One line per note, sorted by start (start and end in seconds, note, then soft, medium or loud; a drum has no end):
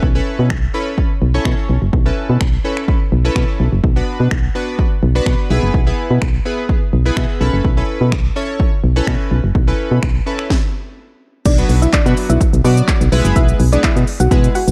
0.03 0.20 B1 loud
0.03 kick loud
0.15 0.49 C#4 medium
0.15 0.49 E4 medium
0.15 0.49 A4 medium
0.15 0.49 B4 medium
0.39 0.52 B2 medium
0.50 0.68 B1 loud
0.50 finger snap loud
0.50 kick loud
0.74 1.09 C#4 medium
0.74 1.09 E4 medium
0.74 1.09 A4 medium
0.74 1.09 B4 medium
0.98 kick loud
1.22 1.39 B1 medium
1.34 1.75 C#4 medium
1.34 1.75 E4 medium
1.34 1.75 A4 medium
1.34 1.75 C#5 loud
1.45 1.55 B2 loud
1.45 finger snap loud
1.45 kick loud
1.69 1.79 B1 loud
1.82 1.90 F#1 medium
1.93 2.11 B1 loud
1.93 kick loud
2.05 2.39 C#4 medium
2.05 2.39 E4 medium
2.05 2.40 A4 medium
2.05 2.40 B4 medium
2.30 2.38 B2 loud
2.41 2.58 B1 medium
2.41 finger snap loud
2.41 kick loud
2.64 2.99 C#4 medium
2.64 3.00 E4 medium
2.64 3.00 A4 medium
2.64 3.00 B4 medium
2.77 finger snap medium
2.88 kick loud
3.12 3.30 B1 medium
3.25 3.66 C#4 medium
3.25 3.66 E4 medium
3.25 3.66 A4 medium
3.25 3.66 B4 loud
3.36 3.45 B2 loud
3.36 finger snap loud
3.36 kick loud
3.60 3.69 B1 loud
3.73 3.81 F#1 medium
3.84 4.01 B1 loud
3.84 kick loud
3.96 4.30 B3 medium
3.96 4.30 D4 medium
3.96 4.30 F#4 medium
3.96 4.30 B4 medium
4.20 4.28 B2 medium
4.31 4.49 B1 medium
4.31 finger snap loud
4.31 kick loud
4.55 4.90 B3 medium
4.55 4.90 D4 medium
4.55 4.90 F#4 medium
4.55 4.90 B4 medium
4.79 kick loud
5.03 5.20 B1 loud
5.15 5.49 B3 medium
5.15 5.50 D4 medium
5.15 5.50 F#4 medium
5.15 5.49 B4 loud
5.26 5.36 B2 loud
5.26 finger snap loud
5.26 kick loud
5.50 5.60 B1 loud
5.50 5.79 B3 medium
5.50 5.79 E4 medium
5.50 5.79 G#4 medium
5.50 5.79 B4 loud
5.63 5.71 F#1 medium
5.74 5.92 B1 loud
5.74 kick loud
5.87 6.20 B3 medium
5.87 6.20 E4 medium
5.87 6.21 G#4 medium
5.87 6.21 B4 loud
6.11 6.19 B2 loud
6.22 6.39 B1 loud
6.22 finger snap loud
6.22 kick loud
6.45 6.80 B3 medium
6.45 6.81 E4 medium
6.45 6.81 G#4 medium
6.45 6.81 B4 loud
6.69 kick loud
6.93 7.11 B1 medium
7.05 7.41 B3 medium
7.05 7.40 E4 medium
7.05 7.41 G#4 medium
7.05 7.40 B4 loud
7.17 7.26 B2 loud
7.17 7.39 E5 medium
7.17 finger snap loud
7.17 kick loud
7.41 7.50 B1 medium
7.41 7.70 C#4 medium
7.41 7.70 E4 medium
7.41 7.70 A4 medium
7.41 7.70 B4 loud
7.41 7.63 B5 medium
7.53 7.62 F#1 medium
7.65 7.82 B1 loud
7.65 kick loud
7.77 8.11 C#4 medium
7.77 8.11 E4 medium
7.77 8.11 A4 medium
7.77 8.11 B4 loud
8.01 8.14 B2 medium
8.12 8.30 B1 medium
8.12 finger snap loud
8.12 kick loud
8.36 8.71 C#4 medium
8.36 8.71 E4 medium
8.36 8.71 A4 medium
8.36 8.71 C#5 loud
8.60 kick loud
8.84 9.01 B1 medium
8.96 9.37 C#4 loud
8.96 9.37 E4 medium
8.96 9.37 A4 medium
8.96 9.37 B4 loud
9.07 9.17 B2 loud
9.07 finger snap loud
9.07 kick loud
9.31 9.41 B1 medium
9.44 9.52 F#1 medium
9.55 9.73 B1 loud
9.55 kick loud
9.67 10.01 C#4 medium
9.67 10.01 E4 medium
9.67 10.01 A4 medium
9.67 10.02 B4 loud
9.91 10.00 B2 loud
10.03 10.20 B1 medium
10.03 finger snap loud
10.03 kick loud
10.26 10.50 C#4 medium
10.26 10.50 E4 medium
10.26 10.50 A4 medium
10.26 10.50 B4 loud
10.39 finger snap medium
10.50 kick loud
10.50 snare medium
11.46 11.63 B1 loud
11.46 11.55 D4 medium
11.46 11.54 D5 loud
11.46 kick loud
11.46 closed hi-hat medium
11.46 crash loud
11.46 shaker medium
11.58 11.85 F#3 medium
11.58 11.85 B3 medium
11.58 11.85 D4 medium
11.58 11.86 F#4 medium
11.58 11.86 B4 loud
11.58 closed hi-hat medium
11.58 shaker medium
11.69 11.87 B1 medium
11.69 open hi-hat medium
11.69 shaker medium
11.82 11.90 E4 medium
11.82 11.90 E5 medium
11.82 closed hi-hat medium
11.82 shaker medium
11.93 11.98 B2 soft
11.93 12.02 D4 medium
11.93 12.02 D5 medium
11.93 kick loud
11.93 clap loud
11.93 closed hi-hat medium
11.93 shaker medium
12.06 12.14 B2 loud
12.06 12.39 F#3 medium
12.06 12.39 B3 medium
12.06 12.40 D4 medium
12.06 12.40 F#4 medium
12.06 12.40 B4 medium
12.06 closed hi-hat medium
12.06 shaker medium
12.17 open hi-hat medium
12.17 shaker medium
12.30 12.38 B1 loud
12.30 12.47 E4 medium
12.30 12.46 E5 medium
12.30 closed hi-hat medium
12.30 shaker medium
12.41 kick loud
12.41 closed hi-hat medium
12.41 shaker medium
12.53 12.62 B1 loud
12.53 closed hi-hat medium
12.53 shaker medium
12.64 12.82 B2 loud
12.64 12.99 F#3 medium
12.64 13.00 B3 medium
12.64 13.00 D4 medium
12.64 13.00 F#4 medium
12.64 12.74 F#4 medium
12.64 13.00 D5 medium
12.64 12.73 F#5 medium
12.64 open hi-hat medium
12.64 shaker medium
12.77 closed hi-hat medium
12.77 shaker medium
12.88 kick loud
12.88 clap loud
12.88 closed hi-hat medium
12.88 shaker medium
13.01 13.09 B1 loud
13.01 closed hi-hat medium
13.01 shaker medium
13.12 13.22 B1 loud
13.12 13.60 G#3 loud
13.12 13.60 B3 medium
13.12 13.60 E4 medium
13.12 13.60 G#4 medium
13.12 13.60 B4 loud
13.12 open hi-hat medium
13.12 shaker medium
13.25 13.33 F#1 medium
13.25 closed hi-hat medium
13.25 shaker medium
13.36 13.54 B1 loud
13.36 13.45 E4 medium
13.36 13.45 E5 loud
13.36 kick loud
13.36 closed hi-hat medium
13.36 shaker medium
13.48 closed hi-hat medium
13.48 shaker medium
13.60 13.77 B1 loud
13.60 open hi-hat medium
13.60 shaker medium
13.72 14.06 G#3 medium
13.72 14.06 B3 medium
13.72 13.81 D4 medium
13.72 14.06 E4 medium
13.72 14.06 G#4 medium
13.72 14.06 B4 medium
13.72 13.80 D5 medium
13.72 closed hi-hat medium
13.72 shaker medium
13.84 13.89 B2 medium
13.84 13.93 E4 medium
13.84 13.92 E5 medium
13.84 kick loud
13.84 clap loud
13.84 closed hi-hat medium
13.84 shaker medium
13.96 14.05 B2 medium
13.96 closed hi-hat medium
13.96 shaker medium
14.07 open hi-hat medium
14.07 shaker medium
14.20 14.28 B1 medium
14.20 14.37 F#4 medium
14.20 14.37 F#5 medium
14.20 closed hi-hat medium
14.20 shaker medium
14.31 14.49 B2 loud
14.31 14.59 G#3 medium
14.31 14.59 B3 medium
14.31 14.59 E4 medium
14.31 14.59 G#4 medium
14.31 14.59 B4 medium
14.31 kick loud
14.31 closed hi-hat medium
14.31 shaker medium
14.44 closed hi-hat medium
14.44 shaker medium
14.55 14.64 F#4 medium
14.55 14.64 F#5 medium
14.55 open hi-hat medium
14.55 shaker medium
14.68 14.71 B1 medium
14.68 closed hi-hat medium
14.68 shaker medium